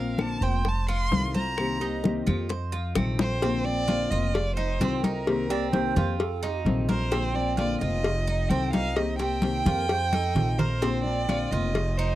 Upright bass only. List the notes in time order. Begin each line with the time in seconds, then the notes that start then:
Already playing: A#1
0.41 F1
1.11 C2
2.27 F2
2.96 A#1
4.11 F1
4.81 C2
5.96 F2
6.65 A#1
7.81 F1
8.50 C2
9.66 F2
10.35 A#1
11.52 F1